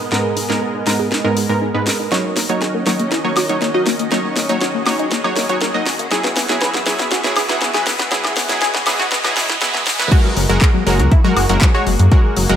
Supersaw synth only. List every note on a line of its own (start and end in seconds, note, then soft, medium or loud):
0.12 0.46 G#2 medium
0.12 0.46 G#3 medium
0.12 0.46 B3 medium
0.12 0.46 A#4 medium
0.49 0.84 G#2 loud
0.49 0.84 G#3 medium
0.49 0.84 B3 medium
0.49 0.84 A#4 loud
0.87 1.10 G#2 medium
0.87 1.10 G#3 medium
0.87 1.10 B3 medium
0.87 1.10 A#4 medium
1.24 1.46 G#2 medium
1.24 1.46 G#3 medium
1.24 1.46 B3 medium
1.24 1.46 A#4 loud
1.49 1.71 G#2 medium
1.49 1.71 G#3 medium
1.49 1.71 B3 medium
1.49 1.71 A#4 medium
1.74 1.89 G#2 medium
1.74 1.89 G#3 medium
1.74 1.89 B3 medium
1.74 1.89 B4 medium
2.12 2.46 F#3 medium
2.12 2.46 D#4 medium
2.12 2.46 C#5 medium
2.50 2.84 F#3 medium
2.50 2.84 D#4 medium
2.50 2.84 C#5 loud
2.87 3.10 F#3 medium
2.87 3.10 D#4 medium
2.87 3.10 C#5 medium
3.25 3.46 F#3 medium
3.25 3.46 D#4 medium
3.25 3.46 C#5 loud
3.49 3.71 F#3 medium
3.49 3.71 D#4 medium
3.49 3.71 C#5 medium
3.74 3.89 F#3 medium
3.74 3.89 D#4 medium
3.74 3.89 D#5 medium
4.11 4.46 F#3 medium
4.11 4.46 D#4 medium
4.11 4.46 C#5 medium
4.49 4.84 F#3 medium
4.49 4.84 D#4 medium
4.49 4.84 C#5 loud
4.86 5.10 F#3 medium
4.86 5.10 D#4 medium
4.86 5.10 C#5 medium
5.24 5.46 F#3 medium
5.24 5.46 D#4 medium
5.24 5.46 C#5 loud
5.49 5.71 F#3 medium
5.49 5.71 D#4 medium
5.49 5.71 C#5 medium
5.74 5.89 F#3 medium
5.74 5.89 D#4 medium
5.74 5.89 D#5 medium
6.11 6.46 F#3 medium
6.11 6.46 E4 medium
6.11 6.46 G#4 medium
6.49 6.84 F#3 loud
6.49 6.84 E4 medium
6.49 6.84 G#4 loud
6.86 7.10 F#3 medium
6.86 7.10 E4 medium
6.86 7.10 G#4 medium
7.24 7.46 F#3 medium
7.24 7.46 E4 medium
7.24 7.46 G#4 loud
7.49 7.70 F#3 medium
7.49 7.70 E4 medium
7.49 7.70 G#4 medium
7.74 7.89 F#3 medium
7.74 7.89 E4 medium
7.74 7.89 B4 medium
8.11 8.46 F#3 medium
8.11 8.46 E4 medium
8.11 8.46 G#4 medium
8.49 8.84 F#3 medium
8.49 8.84 E4 medium
8.49 8.84 G#4 loud
8.86 9.10 F#3 medium
8.86 9.10 E4 medium
8.86 9.10 G#4 medium
9.24 9.46 F#3 medium
9.24 9.46 E4 medium
9.24 9.46 G#4 loud
9.61 9.85 F#3 loud
9.61 9.85 E4 loud
9.61 9.85 G#4 loud
9.99 10.10 F#3 medium
9.99 10.10 E4 medium
9.99 10.10 B4 medium
10.12 10.46 G#3 medium
10.12 10.46 F#4 medium
10.12 10.46 A#4 medium
10.49 10.84 G#3 loud
10.49 10.84 F#4 medium
10.49 10.84 A#4 loud
10.87 11.10 G#3 medium
10.87 11.10 F#4 medium
10.87 11.10 A#4 loud
11.24 11.46 G#3 medium
11.24 11.46 F#4 medium
11.24 11.46 A#4 loud
11.50 11.71 G#3 medium
11.50 11.71 F#4 medium
11.50 11.71 A#4 medium
11.75 11.89 G#3 medium
11.75 11.89 F#4 medium
11.75 11.89 C#5 medium
12.12 12.46 G#3 medium
12.12 12.46 F#4 medium
12.12 12.46 A#4 medium
12.49 12.56 G#3 loud
12.49 12.56 F#4 medium
12.49 12.56 A#4 loud